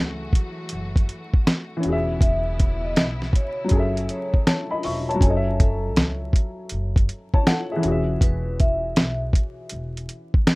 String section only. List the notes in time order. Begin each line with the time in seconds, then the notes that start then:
Already playing: E3 A3 F#4
1.82 C#3 B3 E4
3.70 F#3 A3